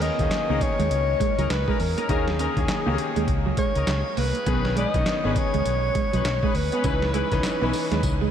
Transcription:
Already playing: D#3 A#3 C#4 G#4
0.01 A#3 C#4 D#4 G#4 A#4 D#5, closed hi-hat
0.19 D#2 D#3 A#3 C#4 G#4, kick, closed hi-hat
0.31 muted fingered electric bass stroke, snare, clap, closed hi-hat
0.49 C#2 D#3 A#3 C#4 D#4 G#4 A#4
0.61 C#5, muted clean electric guitar stroke, kick, closed hi-hat
0.79 D#2 G#3, closed hi-hat
0.91 C#2, muted clean electric guitar stroke, closed hi-hat
1.20 G#3, kick, closed hi-hat
1.37 C#2 F#3 C#4 D#4 G#4 A#4, closed hi-hat
1.50 C#2 B4, snare, clap, closed hi-hat
1.67 G#3 C#4 D#4 G#4 A#4, kick
1.80 E2 A#4, muted clean electric guitar stroke, open hi-hat
1.97 A#3 C#4 D#4 G#4 A#4, closed hi-hat
2.09 D#2 D#3 A#3 C#4 D#4 G#4 A#4, kick, closed hi-hat
2.27 muted clean electric guitar stroke, snare
2.38 C#4 D#4 G#4 A#4, closed hi-hat
2.57 D#2 D#3 A#3 C#4 G#4, kick, closed hi-hat
2.68 muted fingered electric bass stroke, snare, clap, closed hi-hat
2.86 C#2 D#3 A#3 C#4 D#4 G4 G#4 A#4
2.94 G#4
2.98 muted clean electric guitar stroke, closed hi-hat
3.16 D#2 G#3, closed hi-hat
3.28 C#2, muted clean electric guitar stroke, kick, closed hi-hat
3.46 F#3
3.57 G#3 C#5, kick, closed hi-hat
3.75 C#2 C#4 D#4 G#4 A#4, closed hi-hat
3.87 C#2, snare, clap, closed hi-hat
4.17 C2 A#3 B4, open hi-hat
4.35 closed hi-hat
4.46 B1 D#3 B3 C#4 D#4 G#4 B4, kick, closed hi-hat
4.65 muted clean electric guitar stroke, snare
4.76 G#3 C#4 D#4 G#4 B4 D#5, closed hi-hat
4.94 B1 D#3 B3 C#4 D#4, kick, closed hi-hat
5.06 snare, clap, closed hi-hat
5.24 G#1 D#3 B3 C#4 D#4 G#4 B4
5.36 C#5, muted clean electric guitar stroke, kick, closed hi-hat
5.54 C#2 G#3, closed hi-hat
5.66 B1, muted clean electric guitar stroke, closed hi-hat
5.95 G#3, kick, closed hi-hat
6.13 B1 F#3 C#4 D#4 G#4 B4, closed hi-hat
6.25 B1, snare, clap, closed hi-hat
6.42 G#3 C#4 D#4 G#4 B4, kick
6.55 D2 B4, muted clean electric guitar stroke, open hi-hat
6.72 B3 C#4 D#4 G#4 B4, closed hi-hat
6.84 C#2 E3 C#4 D#4 E4 B4, kick, closed hi-hat, tambourine
7.02 muted clean electric guitar stroke, snare
7.14 G#3 C#4 D#4 E4 B4, closed hi-hat
7.32 C#2 E3 C#4 D#4 B4, kick, closed hi-hat
7.43 snare, clap, closed hi-hat, tambourine
7.61 B1 E3 B3 C#4 D#4 E4 B4
7.73 muted clean electric guitar stroke, open hi-hat, tambourine
7.92 D#2 G#3, snare, closed hi-hat
8.03 C#2, muted clean electric guitar stroke, kick, closed hi-hat, tambourine
8.21 G#3

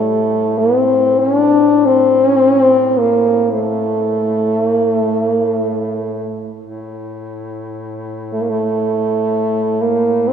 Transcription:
Already playing: A2 A3
0.58 C4
1.19 C#4
1.38 D4
1.86 C4
2.98 A#3
3.53 A3
4.67 A#3
4.90 A3
5.29 A#3
5.53 A3
6.60 A2
8.33 A3
8.41 A#3
8.49 A3
9.81 A#3
10.28 C4

